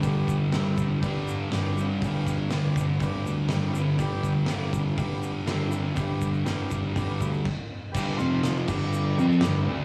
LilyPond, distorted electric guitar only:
\new Staff \with { instrumentName = "Distorted electric guitar" } { \clef bass \time 4/4 \key g \mixolydian \tempo 4 = 122 <g, d g>4 <g, d g>8 <d g>8 <g, d g>4 <g, d g>8 <d g>8 | <g, d g>4 <g, d g>8 <d g>8 <g, d g>4 <g, d g>8 <d g>8 | <g, d g>4 <g, d g>8 <d g>8 <g, d g>4 <g, d g>8 <d g>8 | <g, d g>4 <g, d g>8 <d g>8 <g, d g>4 r4 |
<g, d g>8 <f, c f>4 <g, d g>4 <f c' f'>8 <g, d g>8 <d a d'>8 | }